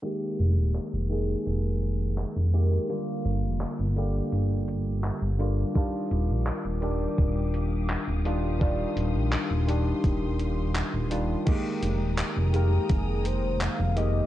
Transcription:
<<
  \new Staff \with { instrumentName = "String section" } { \time 4/4 \key f \dorian \tempo 4 = 84 << { r1 | r1 | <g' f'' ees'''>1~ | <g' f'' ees'''>1 |
<aes g'' ees'''>1 | } \\ { r1 | r1 | d'''1 | c'''1 |
bes''1 | } >> }
  \new Staff \with { instrumentName = "Soft synth lead" } { \time 4/4 \key f \dorian r1 | r1 | r1 | r1 |
r4. g'8 aes'8 c''8 f''8 ees''8 | }
  \new Staff \with { instrumentName = "Tine electric piano" } { \time 4/4 \key f \dorian <ees aes bes g'>4. <ees aes bes aes'>2 <ees aes bes g'>8 | <d g bes f'>4. <d g bes g'>2 <d g bes f'>8 | <ees g d' f'>4. <ees g d' g'>2 <ees g d' f'>8 | <ees g d' f'>4. <ees g d' g'>2 <ees g d' f'>8 |
<ees aes bes g'>4. <ees aes bes bes'>2 <ees aes bes g'>8 | }
  \new Staff \with { instrumentName = "Analog synth bass" } { \clef bass \time 4/4 \key f \dorian r8 f,,16 ees,,16 r16 f,,8 r16 f,,4 r16 f,,8 r16 | r8 g,,16 f,,16 r16 g,,8 r16 g,,4 r16 g,,8 r16 | r8 ees,,16 bes,,16 r16 ees,,8 r16 ees,,4 r16 ees,,8.~ | ees,,16 r16 ees,,16 bes,,16 r16 ees,,8 r16 ees,,4 r16 ees,,8 r16 |
r8 f,,16 ees,,16 r16 f,,8 r16 f,,4 r16 f,,8 r16 | }
  \new DrumStaff \with { instrumentName = "Drums" } \drummode { \time 4/4 hh8 hh8 <hc hh>8 hh8 hh8 hh8 <hc hh>8 hh8 | hh8 hh8 <hc hh>8 hh8 hh8 hh8 <hc hh>8 hh8 | <hh bd>8 hh8 <hc hh>8 hh8 <hh bd>8 hh8 <hc hh>8 hh8 | <hh bd>8 hh8 <hc hh>8 hh8 <hh bd>8 hh8 <hc hh>8 hh8 |
<cymc hh bd>8 hh8 <hc hh>8 hh8 <hh bd>8 hh8 <hc hh>8 hh8 | }
>>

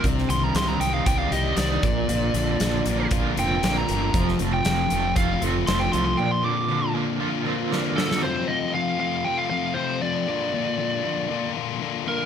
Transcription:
<<
  \new Staff \with { instrumentName = "Lead electric guitar" } { \time 4/4 \key bes \major \tempo 4 = 117 r8 c'''16 bes''16 c'''16 bes''16 g''16 f''16 g''16 f''16 ees''8 d''4~ | d''2 r8 g''8 g''16 bes''8.~ | bes''16 r8 g''4~ g''16 f''8 r8 c'''16 g''16 c'''16 c'''16 | g''16 c'''16 d'''4 r2 a'8 |
c''8 ees''8 f''8 f''8 g''16 f''16 f''8 c''8 d''8~ | d''2~ d''8 r4 bes'8 | }
  \new Staff \with { instrumentName = "Twelve-string acoustic guitar" } { \time 4/4 \key bes \major <c ees c' d' g'>8 <c' d' g'>8 <ees c' g'>4. <c' d' g'>8 <ees c' d' g'>8 <c' d' f'>8 | <bes, f c' d' f'>8 <c' d' f'>8 <f c' d' f'>4. <c' d' f'>8 <f c' d' f'>8 <c' d' f'>8 | <f, c f a c' f'>8 <f a c' f'>8 <f a c' f'>4. <f a c' f'>8 <a c' f'>8 <f a c' f'>8 | <bes, f c' d' f'>8 <c' d' f'>8 <f c' d' f'>4. <c' d' f'>8 <f c' d' f'>8 <c' d' f'>8 |
r1 | r1 | }
  \new Staff \with { instrumentName = "Distorted electric guitar" } { \time 4/4 \key bes \major c8 ees8 ees8 g8 g'8 g8 ees8 bes,8 | bes,8 d8 d8 bes8 f'8 bes8 d8 bes8 | f,8 c8 f8 a8 f'8 a8 f8 a8 | bes,8 d8 d8 bes8 f'8 bes8 d8 bes8 |
<f, c f a c' f'>8 <f, c f a c' f'>8 <f, c f a c' f'>8 <f, c f a c' f'>8 <f, c f a c' f'>8 <f, c f a c' f'>8 <f, c f a c' f'>8 <f, c f a c' f'>8 | <bes, d bes d' f'>8 <bes, d bes d' f'>8 <bes, d bes d' f'>8 <bes, d bes d' f'>8 <bes, d bes d' f'>8 <bes, d bes d' f'>8 <bes, d bes d' f'>8 <bes, d bes d' f'>8 | }
  \new Staff \with { instrumentName = "Overdriven electric guitar" } { \time 4/4 \key bes \major c8 g8 c'8 ees'8 d''8 g'8 ees'8 bes,8 | bes,8 d8 d8 bes8 f'8 c'8 bes8 d8 | f8 a8 f8 a8 f'8 c'8 a8 f8 | bes,8 d8 d8 bes8 f'8 c'8 bes8 d8 |
r1 | r1 | }
  \new Staff \with { instrumentName = "Fingered electric bass" } { \clef bass \time 4/4 \key bes \major c,8 c,8 c,8 c,8 c,8 c,8 c,8 bes,,8 | bes,,8 bes,,8 bes,,8 bes,,8 bes,,8 f,,8 bes,,8 g,,8 | f,,8 f,,8 f,,8 f,,8 f,,8 f,,8 f,,8 c,8 | r1 |
r1 | r1 | }
  \new DrumStaff \with { instrumentName = "Drums" } \drummode { \time 4/4 <hh bd>16 sn16 hh8 <hh sn>8 hh8 <hh bd>8 hh8 <hh sn>8 <hh bd>8 | hh8 hh8 <hh sn>8 hh8 <hh bd>8 hh8 <hh sn>8 hh8 | <hh bd>16 sn16 hh8 <hh sn>8 hh8 <hh bd>8 hh8 <hh sn>8 hh8 | r4 r4 r4 sn8 sn16 sn16 |
r4 r4 r4 r4 | r4 r4 r4 r4 | }
>>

